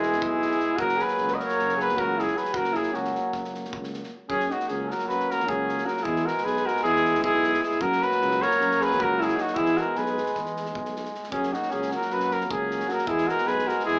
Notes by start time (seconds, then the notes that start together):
Already playing: E1 G#3 B3 E4 G#4
0.03 snare
0.13 snare
0.21 B1 E4 G#4, kick
0.42 snare
0.52 snare
0.60 snare
0.77 F#1 F#3 A#3 F#4 A#4, kick
0.89 snare
0.97 G#4, snare
1.02 B4
1.09 snare
1.18 C#2, snare
1.28 B4, snare
1.34 A#4 D#5
1.40 C#5, snare
1.49 snare
1.59 F#1, snare
1.69 snare
1.76 G#4, snare
1.81 B4
1.89 snare
1.97 C#2 F#4 A#4, kick
2.18 E4 G#4, snare
2.28 snare
2.35 G#4 B4, snare
2.45 snare
2.53 F#1 F#3 A#3 F#4 A#4, kick
2.64 snare
2.73 E4 G#4, snare
2.83 snare
2.92 C#2 C#4 F#4, snare
3.05 snare
3.15 snare
3.33 F#1, kick, snare
3.45 snare
3.55 snare
3.65 snare
3.73 C#2, kick
3.84 snare
3.94 snare
4.04 snare
4.29 F#2 F#3 A#3 C#4 G#4, kick
4.40 snare
4.50 D#4 F#4, snare
4.60 snare
4.68 C#2 C#4 G#4, snare
4.89 F#4 A#4, snare
4.99 snare
5.07 F#2 F#4 B4, snare
5.20 snare
5.29 F#4 A#4, snare
5.40 snare
5.46 C#2 C#4 G#4, kick
5.69 snare
5.78 snare
5.85 F#4 A#4, snare
5.97 snare
6.03 E2 G#3 B3 E4 G#4, kick
6.16 snare
6.26 F#4 A#4, snare
6.38 snare
6.44 B1 G#4 B4, snare
6.57 snare
6.66 F#4 A#4, snare
6.76 snare
6.83 E2 E4 G#4, snare
6.96 snare
7.06 snare
7.15 snare
7.23 B1 E4 G#4, kick
7.44 snare
7.54 snare
7.62 E4 G#4, snare
7.72 snare
7.80 F#2 F#3 A#3 F#4 A#4, kick
7.92 snare
8.02 F#4 B4, snare
8.11 snare
8.21 C#2, snare
8.31 snare
8.42 A#4 C#5, snare
8.51 snare
8.60 F#2, snare
8.71 snare
8.81 G#4 B4, snare
8.91 snare
9.00 C#2 F#4 A#4, kick
9.20 E4 G#4, snare
9.29 snare
9.37 D#4, snare
9.41 F#4
9.48 snare
9.55 E2 G#3 B3 E4 G#4, kick
9.66 snare
9.77 F#4 A#4, snare
9.96 B1 G#4 B4, snare
10.06 snare
10.18 snare
10.26 snare
10.35 E2, kick, snare
10.46 snare
10.57 snare
10.66 snare
10.75 B1, kick
10.85 snare
10.96 snare
11.05 snare
11.15 snare
11.24 snare
11.30 F#2 F#3 A#3 C#4 G#4, kick
11.43 snare
11.52 D#4 F#4, snare
11.63 snare
11.70 C#2 C#4 G#4, snare
11.82 snare
11.91 F#4 A#4, snare
12.02 snare
12.10 F#2 F#4 B4, snare
12.20 snare
12.31 F#4 A#4, snare
12.41 F#4, snare
12.46 A#4
12.51 C#2 C#4 G#4, kick
12.71 snare
12.80 snare
12.88 F#4 A#4, snare
12.98 snare
13.07 E2 G#3 B3 E4 G#4, kick
13.18 snare
13.27 F#4 A#4, snare
13.38 snare
13.46 B1 G#4 B4, snare
13.59 snare
13.67 F#4 A#4, snare
13.80 snare
13.85 E2 E4 G#4, snare